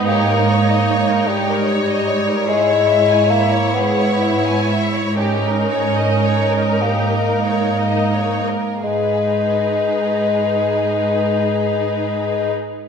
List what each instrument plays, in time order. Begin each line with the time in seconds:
Already playing: cello section G#2, viola section D#4
0.06 bassoon A#3, violin section G4 C#5
0.29 violin section A#4
0.49 violin section C#5
0.69 violin section D#5
0.90 violin section C#5
1.10 violin section A#4
1.28 bassoon G3, violin section G4
1.50 violin section A#4
1.69 violin section C#5
1.89 violin section D#5
2.09 violin section C#5
2.29 violin section A#4
2.48 cello section G#2, bassoon G#3, viola section E4, violin section G#4
2.68 violin section C#5
2.88 violin section E5
3.09 violin section G#5
3.30 bassoon A#3, violin section E5
3.52 violin section C#5
3.74 bassoon B3, violin section G#4
3.99 violin section C#5
4.21 violin section E5
4.46 violin section G#5
4.69 violin section E5
4.94 violin section C#5
5.17 bassoon C#4, viola section D#4, violin section G4 A#4
5.45 violin section A#4
5.71 violin section C#5
5.97 violin section D#5
6.24 violin section C#5
6.53 violin section A#4
6.81 bassoon A#3, violin section G4
7.12 violin section A#4
7.45 violin section C#5
7.78 violin section D#5
8.13 violin section C#5
8.48 violin section A#4
8.82 cello section G#2, bassoon G#3, viola section D#4, violin section G#4 B4